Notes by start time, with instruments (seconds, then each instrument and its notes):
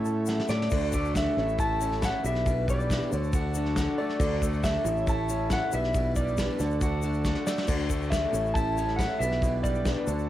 Already playing: fingered electric bass A2, clean electric guitar A2 A3 C#4 E4 A4, reed electric piano E4 A4 C#5, accordion E4 A4 C#5 E5
0.05 steel-string acoustic guitar C#4 E4 A4, reed electric piano A5, shaker
0.09 steel-string acoustic guitar A3
0.26 steel-string acoustic guitar A2 E3 A3 C#4 E4 A4, reed electric piano F#5, snare, shaker
0.40 snare
0.48 fingered electric bass A2, steel-string acoustic guitar C#4 E4 A4, electric slide guitar D5, reed electric piano E5, snare, shaker
0.53 steel-string acoustic guitar A3
0.62 snare
0.70 fingered electric bass D2, steel-string acoustic guitar D3 A3 D4 F#4 A4, reed electric piano D4 F#4 A4 D5, accordion F#4 A4 D5 F#5, kick, crash, shaker
0.91 clean electric guitar A3, steel-string acoustic guitar D4 F#4 A4, electric slide guitar D5, kick, open hi-hat, shaker
1.05 shaker
1.14 steel-string acoustic guitar D3 A3 D4 F#4 A4, electric slide guitar E5, kick, snare, open hi-hat, shaker
1.35 fingered electric bass A1, clean electric guitar A2, steel-string acoustic guitar A3 C#4 E4 A4, reed electric piano C#4 E4 A4 C#5, accordion E4 A4 C#5 E5, snare, open hi-hat
1.49 shaker
1.57 steel-string acoustic guitar A3 C#4 E4 A4, electric slide guitar A5, kick, open hi-hat, shaker
1.79 steel-string acoustic guitar A3 C#4 E4 A4, open hi-hat, shaker
1.92 snare
2.02 steel-string acoustic guitar A2 E3 A3 C#4 E4 A4, electric slide guitar F#5, kick, snare, open hi-hat, shaker
2.23 fingered electric bass B1, clean electric guitar B2, steel-string acoustic guitar G3 D4 E4 B4, reed electric piano E4 G4 B4 D5, accordion E4 G4 B4 D5, electric slide guitar E5, open hi-hat, shaker
2.35 snare
2.45 steel-string acoustic guitar B2 E3 G3 D4 E4 B4, kick, open hi-hat, shaker
2.67 steel-string acoustic guitar G3 D4 E4 B4, electric slide guitar D5, kick, open hi-hat, shaker
2.80 shaker
2.88 steel-string acoustic guitar B2 E3 G3 D4 E4 B4, kick, snare, open hi-hat, shaker
3.10 fingered electric bass D2, clean electric guitar D3, reed electric piano D4 F#4 A4 D5, accordion D4 F#4 A4 D5, steel-string acoustic guitar D4 F#4 A4, electric slide guitar C#5, open hi-hat, shaker
3.24 shaker
3.31 steel-string acoustic guitar A3 D4 F#4 A4, kick, open hi-hat, shaker
3.54 steel-string acoustic guitar D4 F#4 A4, open hi-hat, shaker
3.65 snare
3.76 steel-string acoustic guitar D3 A3 D4 F#4 A4, kick, snare, open hi-hat, shaker
3.98 clean electric guitar A3, steel-string acoustic guitar D4 F#4 A4, electric slide guitar D5, open hi-hat
4.09 snare
4.19 fingered electric bass D2, steel-string acoustic guitar D3 A3 D4 F#4 A4, reed electric piano D4 F#4 A4 D5, accordion D4 F#4 A4 D5, kick, crash, shaker
4.42 clean electric guitar A3, steel-string acoustic guitar D4 F#4 A4, kick, open hi-hat, shaker
4.53 shaker
4.63 steel-string acoustic guitar D3 A3 D4 F#4 A4, electric slide guitar E5, kick, snare, open hi-hat, shaker
4.84 fingered electric bass A1, clean electric guitar A2, steel-string acoustic guitar A3 C#4 E4 A4, reed electric piano C#4 E4 A4 C#5, accordion C#4 E4 A4 C#5, open hi-hat, shaker
4.97 shaker
5.06 steel-string acoustic guitar A3 C#4 E4 A4, electric slide guitar A5, kick, open hi-hat, shaker
5.28 steel-string acoustic guitar A3 C#4 E4 A4, open hi-hat, shaker
5.50 steel-string acoustic guitar A2 E3 A3 C#4 E4 A4, electric slide guitar F#5, kick, snare, open hi-hat, shaker
5.72 fingered electric bass B1, clean electric guitar B2, steel-string acoustic guitar G3 D4 E4 B4, accordion E4 G4 B4 D5, reed electric piano E4 G4 B4 D5, electric slide guitar E5, open hi-hat, shaker
5.84 snare
5.94 steel-string acoustic guitar B2 E3 G3 D4 E4 B4, kick, open hi-hat, shaker
6.16 steel-string acoustic guitar G3 D4 E4 B4, electric slide guitar D5, kick, open hi-hat, shaker
6.28 shaker
6.37 steel-string acoustic guitar B2 E3 G3 D4 E4 B4, kick, snare, open hi-hat, shaker
6.58 fingered electric bass D2, clean electric guitar D3, accordion D4 F#4 A4 D5, reed electric piano D4 F#4 A4 D5, steel-string acoustic guitar A4, snare, open hi-hat, shaker
6.62 steel-string acoustic guitar D4 F#4
6.71 shaker
6.80 steel-string acoustic guitar A3 D4 F#4 A4, kick, open hi-hat, shaker
7.02 steel-string acoustic guitar D4 F#4 A4, open hi-hat, shaker
7.14 shaker
7.25 steel-string acoustic guitar D3 A3 D4 F#4 A4, kick, snare, shaker
7.35 snare
7.45 clean electric guitar A3, steel-string acoustic guitar D4 F#4 A4, electric slide guitar D5, snare, shaker
7.57 snare, shaker
7.67 fingered electric bass D2, steel-string acoustic guitar D3 A3 D4 F#4 A4, accordion D4 F#4 A4 D5, reed electric piano D4 F#4 A4 D5, kick, crash, shaker
7.90 clean electric guitar A3, steel-string acoustic guitar D4 F#4 A4, kick, open hi-hat, shaker
8.02 shaker
8.10 steel-string acoustic guitar D3 A3 D4 F#4 A4, electric slide guitar E5, kick, snare, open hi-hat, shaker
8.32 fingered electric bass A1, clean electric guitar A2, steel-string acoustic guitar A3 C#4 E4 A4, reed electric piano C#4 E4 A4 C#5, accordion C#4 E4 A4 C#5, open hi-hat, shaker
8.46 shaker
8.54 steel-string acoustic guitar A3 C#4 E4 A4, electric slide guitar A5, kick, open hi-hat, shaker
8.77 steel-string acoustic guitar A3 C#4 E4 A4, open hi-hat, shaker
8.88 snare
8.96 steel-string acoustic guitar A2 E3 A3 C#4 E4, electric slide guitar F#5, kick, snare, open hi-hat, shaker
9.01 steel-string acoustic guitar A4
9.19 fingered electric bass B1, clean electric guitar B2, steel-string acoustic guitar D4 E4 B4, accordion E4 G4 B4 D5, reed electric piano E4 G4 B4 D5, electric slide guitar E5, open hi-hat, shaker
9.24 steel-string acoustic guitar G3
9.32 snare
9.42 steel-string acoustic guitar B2 E3 G3 D4 E4 B4, kick, open hi-hat, shaker
9.63 steel-string acoustic guitar G3 D4 E4 B4, electric slide guitar D5, kick, open hi-hat, shaker
9.75 shaker
9.85 steel-string acoustic guitar B2 E3 G3 D4 E4 B4, kick, snare, open hi-hat, shaker
10.05 fingered electric bass D2, clean electric guitar D3, accordion D4 F#4 A4 D5, reed electric piano D4 F#4 A4 D5, steel-string acoustic guitar F#4 A4, open hi-hat, shaker
10.11 steel-string acoustic guitar D4
10.19 shaker